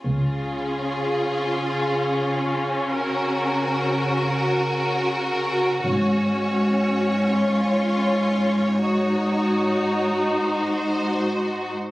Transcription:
<<
  \new Staff \with { instrumentName = "Violin section" } { \time 6/8 \key des \major \tempo 4. = 41 aes'2. | bes'2. | des''2.~ | des''4. c''4. | }
  \new Staff \with { instrumentName = "Violin section" } { \time 6/8 \key des \major f'2. | ges'2.~ | ges'4. f'4. | ges'2. | }
  \new Staff \with { instrumentName = "Viola section" } { \time 6/8 \key des \major des'2.~ | des'2. | des'2. | ees'2. | }
  \new Staff \with { instrumentName = "Cello section" } { \clef bass \time 6/8 \key des \major des2.~ | des2. | aes,2.~ | aes,2. | }
  \new Staff \with { instrumentName = "Double bass section" } { \clef bass \time 6/8 \key des \major des,4 r2 | r2. | aes,,4 r2 | r2. | }
>>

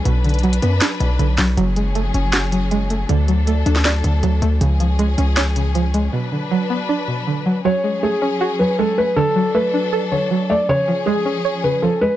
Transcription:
<<
  \new Staff \with { instrumentName = "Felt piano" } { \time 4/4 \key fis \minor \tempo 4 = 158 r1 | r1 | r1 | r1 |
r1 | cis''4 gis'4. b'8 a'8 b'8 | a'4 b'4. cis''4 d''8 | cis''4 gis'4. b'8 a'8 b'8 | }
  \new Staff \with { instrumentName = "String section" } { \time 4/4 \key fis \minor << { <d' b'>1 | <cis' gis'>1 | <d' a'>1 | <cis' gis'>1 |
<d' b'>1 | <cis' gis'>1 | <d' a'>1 | <cis' gis'>1 | } \\ { fis1~ | fis1~ | fis1 | eis1 |
fis1 | fis1 | fis1 | eis1 | } >> }
  \new Staff \with { instrumentName = "Synth pluck" } { \clef bass \time 4/4 \key fis \minor b,8 d8 fis8 b8 d'8 b,8 d8 fis8 | fis8 gis8 a8 cis'8 fis'8 fis8 gis8 a8 | d8 fis8 a8 d'8 d''8 d8 fis8 a8 | cis8 eis8 gis8 cis'8 cis''8 cis8 eis8 gis8 |
b,8 d8 fis8 b8 d'8 b,8 d8 fis8 | fis8 gis8 a8 cis'8 fis'8 fis8 gis8 a8 | d8 fis8 a8 d'8 a'8 d8 fis8 a8 | cis8 eis8 gis8 cis'8 cis''8 cis8 eis8 gis8 | }
  \new Staff \with { instrumentName = "808-style bass" } { \clef bass \time 4/4 \key fis \minor b,,4. fis,8 r8 b,,8 b,,8 b,,8 | fis,,4. fis,,2~ fis,,8 | d,4. d,4 d,8 d,8 d,8 | cis,4. cis,2~ cis,8 |
r1 | r1 | r1 | r1 | }
  \new DrumStaff \with { instrumentName = "Drums" } \drummode { \time 4/4 hh8 hh32 hh32 hh32 hh32 hh16 hh16 hh8 <hc hh sn>8 hh8 hh8 <hc hho sn>8 | hh8 hh8 hh8 hh8 <hc hh sn>8 hh8 hh8 hh8 | hh8 hh8 hh8 hh16 sn16 <hc hh sn>8 hh8 hh8 hh8 | hh8 hh8 hh8 hh8 <hc hh sn>8 hh8 hh8 hh8 |
r4 r4 r4 r4 | r4 r4 r4 r4 | r4 r4 r4 r4 | r4 r4 r4 r4 | }
>>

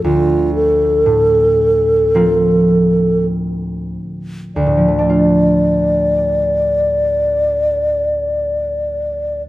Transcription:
<<
  \new Staff \with { instrumentName = "Alto flute" } { \time 4/4 \key d \minor \tempo 4 = 49 f'8 a'2~ a'8 r4 | d''1 | }
  \new Staff \with { instrumentName = "Harp" } { \time 4/4 \key d \minor << { <d, f a c' f'>4 a,4 <f bes c' f'>2~ | <f bes c' f'>1 | } \\ { r1 | <d, a, f a d' f'>1 | } >> }
>>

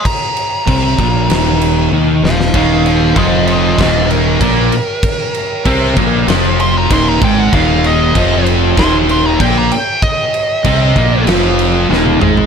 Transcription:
<<
  \new Staff \with { instrumentName = "Lead electric guitar" } { \time 4/4 \key ees \major \tempo 4 = 96 bes''2. r8 <c'' f''>8 | <c'' f''>8 <c'' f''>8 <c'' ees''>8 <c'' ees''>8 <c'' ees''>8 bes'4.~ | bes'4. r4 c'''16 bes''16 c'''16 bes''16 g''16 fis''16 | f''8 ees''4 r8 c'''16 r16 c'''16 bes''16 g''16 bes''16 g''8 |
ees''2 r2 | }
  \new Staff \with { instrumentName = "Distorted electric guitar" } { \clef bass \time 4/4 \key ees \major r4 <c c'>8 <bes, bes>8 <ees, ees>4 <ees ees'>8 <ees, ees>8 | <ees, ees>4 <f, f>4 <ees, ees>4 <bes, bes>8 r8 | r4 <c c'>8 <bes, bes>8 <f, f>4 <ees, ees>8 <aes, aes>8 | <ees, ees>4 <f, f>4 <ees, ees>4 <bes, bes>8 r8 |
r4 <c c'>8 <bes, bes>8 <f, f>4 <ees, ees>8 <aes, aes>8 | }
  \new Staff \with { instrumentName = "Distorted electric guitar" } { \clef bass \time 4/4 \key ees \major r1 | <ees, ees>4 <f, f>4 <ees, ees>4 <bes, bes>8 r8 | r4 <c c'>8 <bes, bes>8 <f, f>4 <ees, ees>8 <aes, aes>8 | <ees, ees>4 <f, f>4 <ees, ees>4 <bes, bes>8 r8 |
r4 <c c'>8 <bes, bes>8 <f, f>4 <ees, ees>8 <aes, aes>8 | }
  \new Staff \with { instrumentName = "Fingered electric bass" } { \clef bass \time 4/4 \key ees \major r4 c,8 bes,,8 ees,,4 ees,8 ees,,8 | ees,,4 f,,4 ees,,4 bes,,8 r8 | r4 c,8 bes,,8 f,,4 ees,,8 aes,,8 | ees,,4 f,,4 ees,,4 bes,,8 r8 |
r4 c,8 bes,,8 f,,4 ees,,8 aes,,8 | }
  \new DrumStaff \with { instrumentName = "Drums" } \drummode { \time 4/4 <cymc bd>8 cymc8 <cymc bd>8 <cymc bd>8 <cymc sn>8 cymc8 tommh8 sn16 sn16 | <cymc bd>8 cymc8 <cymc bd>8 cymc8 <cymc bd sn>8 cymc8 <cymc bd>8 cymc8 | <cymc bd>8 cymc8 <cymc bd>8 <cymc bd>8 <cymc sn>8 cymc8 <cymc bd>8 <cymc bd>8 | <cymc bd>8 cymc8 <cymc bd>8 cymc8 <cymc bd sn>8 cymc8 <cymc bd>8 cymc8 |
<cymc bd>8 cymc8 <cymc bd>8 <cymc bd>8 <cymc sn>8 cymc8 sn16 tommh16 toml16 tomfh16 | }
>>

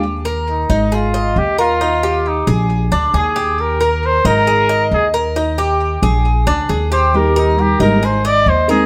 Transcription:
<<
  \new Staff \with { instrumentName = "Cuban tres" } { \time 4/4 \key ees \major \tempo 4 = 135 r8 bes'4 ees'8 aes'8 ees''4 bes'8 | ees'8 g'4 aes'4 d'8 aes'8 g'8~ | g'8 bes'4 ees'8 aes'8 ees''4 bes'8 | ees'8 g'4 aes'4 d'8 aes'8 g'8~ |
g'8 bes'4 ees'8 aes'8 ees''4 bes'8 | }
  \new Staff \with { instrumentName = "Trumpet" } { \time 4/4 \key ees \major r4 ees'4 f'4 g'8 f'8~ | f'4 ees'8 r4. aes'4 | bes'4 c''8 bes'4. aes'8 r8 | r2. r8 c''8 |
bes'8 ees'8 g'8 bes'8 c''8 d''8 c''8 aes'8 | }
  \new Staff \with { instrumentName = "Nylon-string guitar" } { \time 4/4 \key ees \major r1 | r1 | r1 | r1 |
<ees g bes ees' g'>4 <g bes ees' g'>8 <g bes ees' g'>8 r4. <aes c' ees' aes'>8 | }
  \new Staff \with { instrumentName = "Upright bass" } { \clef bass \time 4/4 \key ees \major ees,4. aes,,4. ees,4~ | ees,4. bes,,4 d,8 ees,4~ | ees,4. aes,,4. ees,4~ | ees,4. bes,,4 d,8 ees,4~ |
ees,4. aes,,4. ees,4 | }
>>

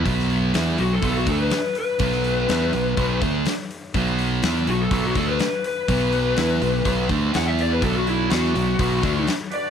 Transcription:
<<
  \new Staff \with { instrumentName = "Electric slide guitar" } { \time 4/4 \key b \minor \tempo 4 = 124 r4. fis'16 a'8 fis'16 a'16 b'8. b'8~ | b'2~ b'8 r4. | r4. fis'16 a'8 fis'16 a'16 b'8. b'8~ | b'2~ b'8 r8 fis''16 e''16 d''16 b'16 |
a'16 fis'16 e'8 fis'2 r8 d''8 | }
  \new Staff \with { instrumentName = "Tonewheel organ" } { \time 4/4 \key b \minor r1 | r1 | r1 | r1 |
<d' fis' b' d''>2 r4. <d' fis' b' d''>8 | }
  \new Staff \with { instrumentName = "Distorted electric guitar" } { \clef bass \time 4/4 \key b \minor <b, fis b>4 <e b e'>8 <b, fis>8 <b, fis b>8 <d a d'>8 r4 | <b, fis b>4 <e b e'>8 <b, fis>8 <b, fis b>8 <d a d'>8 r4 | <b, fis b>4 <e b e'>8 <b, fis>8 <b, fis b>8 <d a d'>8 r4 | <b, fis b>4 <e b e'>8 <b, fis>8 <b, fis b>8 <d a d'>8 <e b e'>4 |
<b, fis b>4 <e b e'>8 <b, fis>8 <b, fis b>8 <d a d'>8 r4 | }
  \new Staff \with { instrumentName = "Fingered electric bass" } { \clef bass \time 4/4 \key b \minor b,,4 e,8 b,,8 b,,8 d,8 r4 | b,,4 e,8 b,,8 b,,8 d,8 r4 | b,,4 e,8 b,,8 b,,8 d,8 r4 | b,,4 e,8 b,,8 b,,8 d,8 e,4 |
b,,4 e,8 b,,8 b,,8 d,8 r4 | }
  \new DrumStaff \with { instrumentName = "Drums" } \drummode { \time 4/4 <hho bd>16 sn16 hho8 <hho sn>8 hho8 <hho bd>8 <hho bd>8 <hho sn>8 hho8 | <hho bd>16 sn16 hho8 <hho sn>8 hho8 <hho bd>8 <hho bd>8 <hho sn>8 hho8 | <hho bd>8 hho8 <hho sn>8 hho8 <hho bd>8 <hho bd>8 <hho sn>8 hho8 | <hho bd>8 hho8 <hho sn>8 hho8 <hho bd>8 <hho bd>8 <hho sn>8 hho8 |
<hho bd>8 hho8 <hho sn>16 sn16 hho8 <hho bd>8 <hho bd>8 <hho sn>8 hho8 | }
>>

